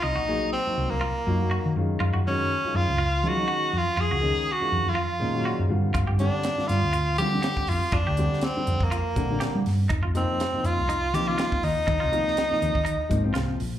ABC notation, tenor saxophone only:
X:1
M:4/4
L:1/16
Q:"Swing 16ths" 1/4=122
K:Gphr
V:1 name="Tenor saxophone"
E4 C3 B,6- B, z2 | z2 _D4 F4 _G4 F2 | A4 _G3 F6- F z2 | z2 D4 F4 G4 F2 |
D4 C3 B,6- B, z2 | z2 C4 F4 G F3 E2- | E12 z4 |]